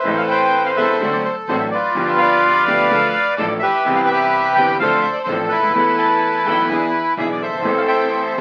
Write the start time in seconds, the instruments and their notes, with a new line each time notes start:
Already playing: bandoneon B4 C5 E5
0.03 upright bass A1, grand piano A1 A2 E3 A3 C4, string section C4 A4
0.07 grand piano A4
0.18 bandoneon F5
0.29 bandoneon B4 C5 G5
0.66 bandoneon F5
0.77 upright bass E1, grand piano E1 E2 E3 B3 C4 A4, string section B3 C4 A4, bandoneon A4 C5 E5
1.00 upright bass D2, grand piano D2 D3 F#3 C4 D4 A4, string section C4 D4 F#4
1.12 bandoneon D5
1.25 bandoneon C5
1.48 upright bass A1, grand piano A1 A2 F#3 C4 D4 A4, string section C4 D4 F#4, bandoneon C5
1.60 bandoneon E5
1.71 bandoneon F4 B4 D5
1.95 upright bass G1, grand piano G1 G2 F3 B3 D4, string section B3 F4 G4
1.99 grand piano G4
2.08 bandoneon E5
2.18 bandoneon B4 D5 F5
2.66 upright bass D2, grand piano D2 D3 F3 B3 D4 G4, string section B3 F4 G4
2.90 upright bass D2, grand piano D2 D3 F3 A3 D4 A4, string section D4 F4 A4
3.37 upright bass A1, grand piano A1 A2 F3 A3 D4 A4, string section D4 F4 A4, bandoneon D5
3.48 bandoneon D5
3.59 bandoneon G4 B4 E5
3.85 upright bass C2, grand piano C2 C3 E3 B3 C4 G4, string section E4 B4
3.96 bandoneon F5
4.07 bandoneon G4 B4 E5
4.55 upright bass G1, grand piano G1 G2 E3 B3 C4 G4, string section C4 E4 B4, bandoneon G5
4.78 upright bass D2, grand piano D2 D3 F3 C4 D4 A4, string section D4 F4 C5, bandoneon F5
4.82 bandoneon A4 C5
5.02 bandoneon E5
5.13 bandoneon D5
5.24 upright bass A1, string section D4 F4 C5, bandoneon C5
5.29 grand piano A1 A2 F3 C4 D4 A4
5.49 bandoneon E4 B4
5.57 upright bass C#2, grand piano C#2
5.63 upright bass D2, grand piano D2
5.69 upright bass D#2, grand piano D#2
5.73 upright bass E2, grand piano E2 E3 A3 B3, string section B3 E4 A4
5.78 grand piano A4
5.98 violin A5
6.45 upright bass B1, grand piano B1 B2 E3 A3 B3 A4, string section B3 E4 A4, violin G5
6.69 grand piano E2 E3 B3 D4 G#4, upright bass E2, string section D4 E4 G#4, violin G#5
7.17 upright bass B1, grand piano B1 B2 E3 B3 D4 G#4, string section D4 E4 G#4, bandoneon E5
7.32 bandoneon D5
7.42 bandoneon A4 C5 E5
7.48 upright bass F#1, grand piano F#1
7.53 grand piano G1, upright bass G1
7.59 upright bass G#1, grand piano G#1 E3
7.64 upright bass A1, grand piano A1 A2 A3 C4 A4, string section C4 E4 A4
7.77 bandoneon F5
7.87 bandoneon C5 E5 G5
8.37 grand piano E3 A3, string section C4 E4 A4